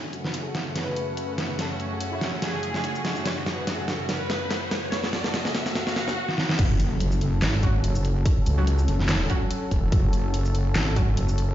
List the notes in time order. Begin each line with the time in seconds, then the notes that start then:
Already playing: F#2 C#3 A3 C#4, riser
0.04 F#4
0.13 F#4, closed hi-hat
0.19 F#5
0.24 F#4 B4, snare
0.34 F#4, closed hi-hat
0.45 G#4
0.55 F#4, snare, closed hi-hat
0.66 F#4
0.76 B4, snare, closed hi-hat
0.81 A3
0.96 closed hi-hat
1.17 closed hi-hat
1.38 snare, closed hi-hat
1.59 A4, snare, closed hi-hat
1.70 C#4
1.80 C#4, closed hi-hat
1.91 G#4
2.01 C#4, closed hi-hat
2.12 E4
2.21 C#4, snare, closed hi-hat
2.33 C#4
2.42 G#4, snare, closed hi-hat
2.63 closed hi-hat
2.74 snare
2.84 closed hi-hat
2.95 shaker
3.05 snare, closed hi-hat
3.16 shaker
3.26 C#5, snare, closed hi-hat
3.37 F#4
3.46 F#4, snare, closed hi-hat
3.58 B4
3.67 F#4, snare, closed hi-hat
3.79 G#4
3.88 F#4, snare, closed hi-hat
3.99 F#4
4.09 B4, snare, closed hi-hat
4.30 snare, closed hi-hat
4.51 snare, closed hi-hat
4.71 snare, closed hi-hat
4.92 C#5, snare, closed hi-hat
5.04 F#4, snare
5.13 F#4, snare, closed hi-hat
5.24 A4, snare
5.34 F#4, snare, closed hi-hat
5.45 G#4, snare
5.55 F#4, snare, closed hi-hat
5.66 F#4, snare, shaker
5.75 F#4, snare, closed hi-hat
5.87 snare
5.96 snare, closed hi-hat
6.08 snare
6.29 snare
6.38 snare
6.49 snare
6.59 F#1 F#3 C#4 A4, kick, closed hi-hat, crash, impact
6.80 closed hi-hat, shaker
7.00 closed hi-hat
7.12 shaker
7.21 closed hi-hat
7.42 G#1, snare, clap, closed hi-hat
7.63 F#3 C#4 F#4, kick, closed hi-hat
7.84 F#1, closed hi-hat
7.95 shaker
8.05 closed hi-hat
8.26 kick, closed hi-hat
8.46 C#2, closed hi-hat, shaker
8.58 F#3 C#4 F#4
8.67 closed hi-hat
8.79 shaker
8.88 F#1, closed hi-hat
9.00 snare
9.09 snare, clap, closed hi-hat
9.30 F#3 C#4 F#4, kick, closed hi-hat
9.51 closed hi-hat
9.71 E1, kick, closed hi-hat
9.92 F#1, kick, closed hi-hat
10.13 closed hi-hat, shaker
10.34 closed hi-hat
10.45 shaker
10.55 closed hi-hat
10.76 G#1, snare, clap, closed hi-hat
10.96 F#3 C#4 F#4, kick, closed hi-hat
11.17 F#1, closed hi-hat
11.29 shaker
11.38 closed hi-hat